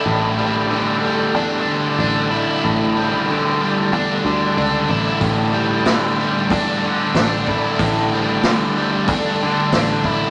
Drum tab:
HH |--------|--------|o-o-o-o-|o-o-o-o-|
SD |--------|--------|--o---o-|--o---o-|
BD |--------|--------|o---o--o|o---o--o|